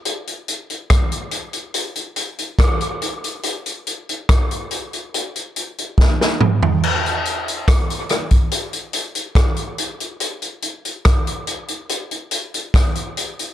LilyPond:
\new DrumStaff \with { instrumentName = "Drums" } \drummode { \time 4/4 \tempo 4 = 71 hh16 hh16 hh16 hh16 <hh bd ss>16 hh16 hh16 hh16 hh16 hh16 hh16 hh16 <hh bd ss>16 hh16 hh16 hh16 | hh16 hh16 hh16 hh16 <hh bd ss>16 hh16 hh16 hh16 hh16 hh16 hh16 hh16 <bd sn>16 sn16 toml16 tomfh16 | cymc16 hh16 hh16 hh16 <hh bd ss>16 hh16 <hh ss>16 <hh bd>16 hh16 hh16 hh16 hh16 <hh bd ss>16 hh16 hh16 hh16 | hh16 hh16 hh16 hh16 <hh bd ss>16 hh16 hh16 hh16 hh16 hh16 hh16 hh16 <hh bd ss>16 hh16 hh16 hh16 | }